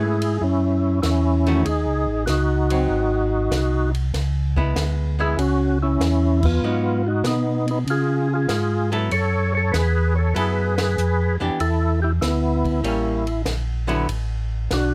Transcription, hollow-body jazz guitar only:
0.00 0.17 A3 medium
0.00 0.18 C#4 medium
0.00 0.18 G#4 medium
0.00 0.18 B4 medium
1.47 1.64 D#3 medium
1.47 1.64 A3 medium
1.47 1.64 C#4 medium
1.47 1.64 F#4 medium
2.71 3.48 F#3 medium
2.71 3.49 C4 medium
4.56 5.15 G#3 medium
4.56 5.15 B3 medium
4.56 5.15 E4 medium
5.19 5.36 G#3 medium
5.19 5.37 B3 medium
5.19 5.37 E4 medium
6.64 7.02 F#3 medium
6.64 7.02 B3 medium
6.64 7.02 D#4 medium
8.92 9.09 F#3 medium
8.92 9.09 B3 medium
8.92 9.10 E4 medium
8.92 9.10 A4 medium
10.35 10.74 F#3 medium
10.35 10.74 B3 medium
10.35 10.74 E4 medium
10.35 10.75 A4 medium
11.40 11.58 E3 medium
11.40 11.58 B3 medium
11.40 11.58 D4 medium
11.40 11.59 G4 medium
12.84 13.23 G3 medium
12.84 13.23 A#3 medium
12.84 13.23 C#4 medium
13.87 14.06 D3 medium
13.87 14.06 F#3 medium
13.87 14.06 B3 medium
13.87 14.06 E4 medium

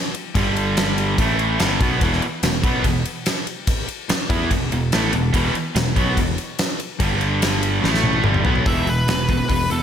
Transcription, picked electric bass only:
0.35 1.14 G1 loud
1.18 1.57 A1 medium
1.61 1.80 G1 medium
1.80 2.00 B1 loud
2.01 2.21 E1 loud
2.43 2.62 E1 medium
2.63 2.83 B1 medium
2.84 3.04 E1 medium
4.10 muted picked electric bass stroke soft
4.30 4.49 E2 loud
4.51 4.70 E1 medium
4.72 4.91 E1 medium
4.93 5.12 A1 medium
5.14 5.33 E1 medium
5.34 5.53 E1 loud
5.54 muted picked electric bass stroke soft
5.76 5.95 E1 medium
5.96 6.16 B1 medium
6.17 6.36 E1 medium
7.00 7.79 G1 loud
7.84 8.22 A1 medium
8.24 8.43 G1 medium
8.44 8.64 B1 loud
8.66 8.82 E1 medium
8.85 9.02 E1 medium
9.07 9.40 E1 medium
9.50 9.66 E1 medium
9.70 9.83 E1 medium

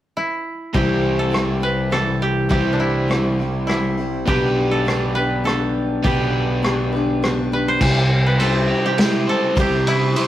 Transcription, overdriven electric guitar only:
0.74 2.48 C3 medium
0.74 2.50 G3 medium
0.74 2.50 C4 medium
0.74 2.49 E4 medium
0.74 2.52 G4 medium
0.74 2.50 C5 medium
2.50 4.25 C3 medium
2.50 6.00 G3 medium
2.50 4.25 C4 medium
2.50 4.26 E4 medium
2.50 4.27 G4 medium
2.50 4.26 C5 medium
4.26 6.01 B3 medium
4.26 6.02 D4 medium
4.26 6.04 G4 medium
4.26 6.02 B4 medium
6.03 7.78 B3 medium
6.03 7.78 D4 medium
6.03 7.79 G4 medium
6.03 7.79 B4 medium
7.81 9.27 C3 medium
8.39 9.26 C5 medium
8.68 10.27 G4 medium
8.98 10.27 E4 medium
9.27 10.15 C5 medium
9.57 10.27 C3 medium
10.16 10.27 C5 medium

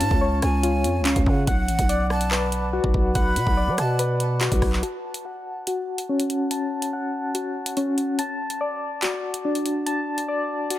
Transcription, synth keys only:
0.00 1.04 C#4 loud
0.00 0.62 F4 medium
0.00 0.20 C#5 medium
0.00 0.63 F5 medium
0.21 1.47 C#5 medium
0.63 1.47 F4 medium
1.05 1.47 C#4 medium
1.48 3.14 F#5 medium
1.89 3.56 D5 medium
2.31 3.98 B4 medium
2.73 4.40 F#4 loud
3.15 4.83 F#5 loud
3.57 4.83 D5 medium
3.99 4.83 B4 medium
4.41 4.83 F#4 loud
4.83 6.50 A5 loud
5.25 6.92 F#5 medium
5.67 7.33 F#4 medium
6.09 7.76 C#4 medium
6.51 8.18 A5 medium
6.93 8.19 F#5 medium
7.34 8.19 F#4 medium
7.77 8.19 C#4 medium
8.19 9.85 A5 medium
8.61 10.27 D5 medium
9.02 10.69 F#4 medium
9.45 10.79 D4 medium
9.86 10.79 A5 medium
10.28 10.79 D5 medium
10.70 10.79 F#4 medium

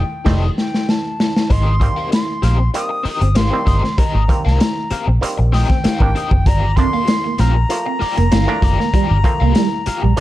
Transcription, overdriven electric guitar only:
0.25 0.47 D#4 medium
0.25 0.47 G4 medium
0.25 0.48 A4 medium
0.25 0.48 D#5 loud
1.50 1.72 C4 medium
1.50 1.73 G4 medium
1.50 1.73 A#4 medium
1.50 1.74 D#5 medium
1.80 muted overdriven electric guitar stroke soft
1.96 2.09 C4 soft
1.96 2.10 G4 medium
1.96 2.10 A#4 medium
1.96 2.12 F5 medium
2.10 muted overdriven electric guitar stroke soft
2.42 2.61 C4 medium
2.42 2.58 G4 medium
2.42 2.58 A#4 medium
2.42 2.58 F5 medium
2.58 muted overdriven electric guitar stroke soft
2.74 muted overdriven electric guitar stroke soft
2.89 muted overdriven electric guitar stroke soft
3.03 3.27 C4 medium
3.03 3.22 G4 medium
3.03 3.21 A#4 medium
3.03 3.20 D#5 medium
3.22 muted overdriven electric guitar stroke soft
3.35 3.58 C4 medium
3.35 3.52 G4 medium
3.35 3.51 A#4 medium
3.35 3.51 F5 medium
3.51 muted overdriven electric guitar stroke medium
3.65 3.84 C4 medium
3.65 3.83 G4 medium
3.65 3.83 A#4 medium
3.65 3.82 D#5 medium
3.83 muted overdriven electric guitar stroke soft
3.98 4.21 C4 medium
3.98 4.21 G4 medium
3.98 4.21 A#4 medium
3.98 4.22 D#5 loud
4.29 muted overdriven electric guitar stroke soft
4.45 4.59 C4 soft
4.45 4.60 G4 soft
4.45 4.60 A#4 medium
4.45 4.61 F5 medium
4.60 muted overdriven electric guitar stroke soft
4.91 5.09 C4 medium
4.91 5.07 G4 medium
4.91 5.07 A#4 medium
4.91 5.07 F5 medium
5.07 muted overdriven electric guitar stroke soft
5.22 muted overdriven electric guitar stroke soft
5.37 muted overdriven electric guitar stroke medium
5.52 5.75 C4 medium
5.52 5.69 G4 medium
5.52 5.68 A#4 medium
5.52 5.67 D#5 medium
5.69 muted overdriven electric guitar stroke soft
5.84 6.06 C4 medium
5.84 6.02 G4 medium
5.84 6.01 A#4 medium
5.84 6.01 F5 medium
6.02 muted overdriven electric guitar stroke medium
6.15 6.33 C4 medium
6.15 6.33 G4 medium
6.15 6.31 A#4 medium
6.15 6.31 D#5 medium
6.32 muted overdriven electric guitar stroke soft
6.47 6.69 A#3 medium
6.47 6.69 F4 medium
6.47 6.69 G4 medium
6.47 6.70 D5 medium
6.78 muted overdriven electric guitar stroke soft
6.93 7.07 A#3 medium
6.93 7.08 F4 soft
6.93 7.08 G4 medium
6.93 7.09 F5 medium
7.08 muted overdriven electric guitar stroke medium
7.39 7.57 A#3 medium
7.39 7.55 F4 medium
7.39 7.55 G4 medium
7.39 7.55 F5 medium
7.55 muted overdriven electric guitar stroke soft
7.69 muted overdriven electric guitar stroke soft
7.86 muted overdriven electric guitar stroke soft
7.99 8.22 A#3 medium
7.99 8.18 F4 medium
7.99 8.17 G4 loud
7.99 8.16 D5 medium
8.18 muted overdriven electric guitar stroke soft
8.31 8.54 A#3 medium
8.31 8.49 F4 medium
8.31 8.48 G4 medium
8.31 8.48 F5 medium
8.49 muted overdriven electric guitar stroke medium
8.62 8.80 A#3 medium
8.62 8.79 F4 medium
8.62 8.79 G4 medium
8.62 8.79 D5 medium
8.80 muted overdriven electric guitar stroke soft
8.93 9.15 A#3 medium
8.93 9.16 F4 medium
8.93 9.16 G4 loud
8.93 9.16 D5 medium
9.24 muted overdriven electric guitar stroke soft
9.40 9.53 A#3 medium
9.40 9.54 F4 medium
9.40 9.54 G4 medium
9.40 9.56 F5 medium
9.54 muted overdriven electric guitar stroke soft
9.86 10.04 A#3 medium
9.86 10.03 F4 medium
9.86 10.03 G4 medium
9.86 10.02 F5 medium
10.03 muted overdriven electric guitar stroke soft
10.17 muted overdriven electric guitar stroke soft

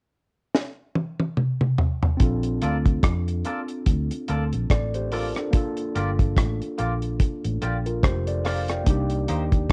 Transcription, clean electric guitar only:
2.62 2.76 A#3 medium
2.62 2.76 F4 medium
2.62 2.76 A4 medium
2.62 2.77 D5 medium
3.45 3.59 A#3 medium
3.45 3.59 F4 medium
3.45 3.60 A4 medium
3.45 3.60 D5 medium
4.29 4.42 A#3 medium
4.29 4.43 F4 medium
4.29 4.43 A4 medium
4.29 4.43 D5 medium
5.12 5.26 A#3 medium
5.12 5.26 F4 medium
5.12 5.26 A4 medium
5.12 5.27 D5 medium
5.36 muted clean electric guitar stroke soft
5.95 6.09 A#3 medium
5.95 6.09 F4 medium
5.95 6.10 G4 medium
5.95 6.10 D5 medium
6.78 6.92 A#3 medium
6.78 6.93 F4 medium
6.78 6.93 G4 medium
6.78 6.93 D5 medium
7.62 7.76 A#3 medium
7.62 7.76 F4 medium
7.62 7.76 G4 medium
7.62 7.76 D5 medium
8.45 8.59 A#3 medium
8.45 8.59 F4 medium
8.45 8.60 G4 medium
8.45 8.60 D5 medium
8.69 muted clean electric guitar stroke soft
9.28 9.42 A#3 medium
9.28 9.43 D#4 medium
9.28 9.43 G4 medium
9.28 9.43 C5 medium

